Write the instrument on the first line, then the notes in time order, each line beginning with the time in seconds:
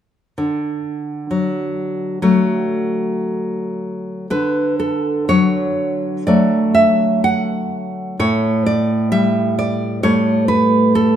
nylon-string guitar
0.38 D3
1.31 F#3
2.22 F#3 A3
4.30 D3 B4
4.79 A4
5.29 F#3 C#5
6.27 F#3 A3 D5
6.75 E5
7.24 F#5
8.19 A2 C#5
8.66 D5
9.12 G3 E5
9.59 D5
10.03 G3 A3 C#5
10.48 B4
10.95 A4